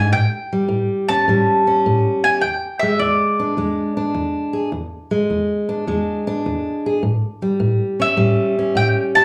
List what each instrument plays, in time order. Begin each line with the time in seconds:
Already playing: steel-string acoustic guitar G#2, mandolin G#5
0.12 steel-string acoustic guitar A2, mandolin G5
0.53 steel-string acoustic guitar G3
0.68 steel-string acoustic guitar A2
1.09 steel-string acoustic guitar C#4, mandolin A5
1.28 steel-string acoustic guitar A2 G3
1.67 steel-string acoustic guitar C#4
1.86 steel-string acoustic guitar A2
2.24 steel-string acoustic guitar G4, mandolin G#5
2.41 steel-string acoustic guitar E2, mandolin G5
2.79 steel-string acoustic guitar G#3, mandolin E5
2.99 steel-string acoustic guitar E2, mandolin D5
3.39 steel-string acoustic guitar D4
3.57 steel-string acoustic guitar E2 G#3
3.97 steel-string acoustic guitar D4
4.14 steel-string acoustic guitar E2
4.53 steel-string acoustic guitar G#4
4.72 steel-string acoustic guitar E2
5.11 steel-string acoustic guitar G#3
5.30 steel-string acoustic guitar E2
5.69 steel-string acoustic guitar D4
5.87 steel-string acoustic guitar E2 G#3
6.27 steel-string acoustic guitar D4
6.46 steel-string acoustic guitar E2
6.86 steel-string acoustic guitar G#4
7.03 steel-string acoustic guitar A2
7.42 steel-string acoustic guitar G3
7.60 steel-string acoustic guitar A2
8.00 steel-string acoustic guitar C#4, mandolin E5
8.17 steel-string acoustic guitar A2 G3
8.59 steel-string acoustic guitar C#4
8.75 steel-string acoustic guitar A2, mandolin G5
9.15 steel-string acoustic guitar G4, mandolin A5